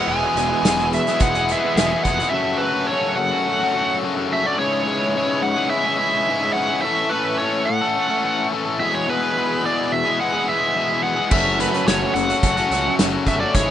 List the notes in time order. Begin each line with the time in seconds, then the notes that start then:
Already playing: G#4 F#5 E6
0.00 E3
0.08 E1 E2 B2 E3 G#3 B3 G#5
0.13 G#4
0.35 E1 E3 G#3 B3 E4, closed hi-hat
0.40 G#3 B3 G#4
0.52 E3 G#3 B3 E4
0.63 E1 E2 B2 E3, muted overdriven electric guitar stroke, snare, closed hi-hat
0.68 G#3 B3 G#4
0.79 E3 G#3 B3 E4, closed hi-hat
0.93 E5, muted overdriven electric guitar stroke, closed hi-hat
1.07 E3 G#3 B3 G#4, muted overdriven electric guitar stroke, snare, closed hi-hat
1.20 E1 F#5, muted overdriven electric guitar stroke, kick, closed hi-hat
1.35 E3 G#3 B3 G#4, closed hi-hat
1.49 E3 G#3 B3 E5, closed hi-hat
1.54 G#4
1.64 E3 G#3 B3 E4
1.76 E1 E2 B2 E3 G#3 B3 G#4, snare, closed hi-hat
1.91 E3 G#3 B3 G#4, muted overdriven electric guitar stroke
2.03 F1 E3 G#3 B3 G#4 F#5, kick, closed hi-hat
2.19 E3 G#3 B3 G#4, closed hi-hat
2.30 F#2 C#3 F#3 A4 E5 E6
2.34 A3 C#4 F#4 F#5
2.58 F#3 B4
2.62 A3 C#4 F#4
2.87 F#2 C#5
2.92 C#3 F#3 A3 C#4 F#4
3.16 F#5, muted overdriven electric guitar stroke
3.31 F#3 A3 C#4 F#4
3.59 A3 C#4 F#4
3.64 F#3
3.74 F#3 A3 C#4 F#4
4.02 F#2 C#3 F#3 A3 C#4 F#4
4.16 F#3 A3 C#4 F#4
4.29 F#3 A3 C#4
4.33 F#4 E5
4.44 F#3 A3 C#4 F#4 D5
4.58 G#2 C#3 G#3 C#4 E4 G#4 B4 C#5 E5 C#6
4.87 G#3 C#4 E4 G#4
5.15 G#2 C#3 G#3 C#4 E4 G#4
5.42 F#5, muted overdriven electric guitar stroke
5.56 C#4 E4 G#4
5.60 G#3
5.70 E5
5.85 G#3 C#4 E4 G#4
5.97 G#3 C#4 E5
6.01 E4 G#4
6.27 G#2 C#3 G#3 C#4 E4 G#4
6.41 G#3 C#4 E4 G#4
6.53 G#3 C#4 F#5
6.58 E4 G#4
6.67 C#4 E4 G#4
6.72 G#3
6.81 A2 E3 A3 C#4 A4 E5
6.86 A4
7.10 E3 A3 C#4 B4
7.14 A4
7.38 A2 E3 A3 C#5
7.43 C#4 A4
7.65 F#5, muted overdriven electric guitar stroke
7.81 A3 C#4 A4
8.08 A3 C#4 A4
8.23 E3 A3 C#4 A4
8.51 A2 E3 A3 C#4 A4
8.66 A3 C#4 A4
8.77 E2 B2 E3 G#3 G#4 E5 F#5 E6
8.82 B3 G#4
8.93 E3 G#3 B3 G#4 C#5
9.07 E2 B2 E3 G#3 B3 G#4 B4
9.35 E3 G#3 B3 G#4
9.63 E2 B2 E3 G#3 B3 G#4 D5
9.92 E5, muted overdriven electric guitar stroke
10.05 E3 G#3 B3 G#4
10.21 F#5
10.33 E3 G#3 B3 G#4
10.45 E3 G#3 B3 G#4
10.49 E5
10.74 E2 B2 E3 G#3 B3 G#4
10.89 G#3 B3 G#4
10.93 E3
11.03 E3 G#3 B3 G#4 F#5
11.16 E3 G#3 B3 G#4
11.29 F#1 F#2 C#3 F#3 A3 C#4 F#4 A4 E5 E6, kick, crash
11.58 C#3 F#3 A3 C#4 F#4 B4, closed hi-hat
11.74 C#3 F#3 A3 C#4, closed hi-hat
11.85 F#1 F#2 C#3 F#3 A3 C#4 F#4 C#5, muted overdriven electric guitar stroke, snare, closed hi-hat
12.02 C#3 F#3 A3 C#4
12.14 F#1 F#5, muted overdriven electric guitar stroke, closed hi-hat
12.29 F#3 A3 C#4 F#4, muted overdriven electric guitar stroke, closed hi-hat
12.43 F#1, muted overdriven electric guitar stroke, kick, closed hi-hat
12.56 F#3 A3 C#4 F#4, closed hi-hat
12.71 C#2 F#3 A3 C#4 F#4, snare, closed hi-hat
12.86 C#3 F#3 A3 C#4
12.99 F#1 F#2 C#3 F#3 A3 C#4 F#4, snare, closed hi-hat
13.13 F#3 A3 C#4 F#4, muted overdriven electric guitar stroke
13.27 G1 F#3 A3 C#4 E5, kick, closed hi-hat
13.31 F#4
13.40 A3 C#4 F#4 D5
13.45 F#3
13.55 G#1 G#2 C#3 G#3 C#4 E4 G#4 B4 C#5 E5 C#6, kick, closed hi-hat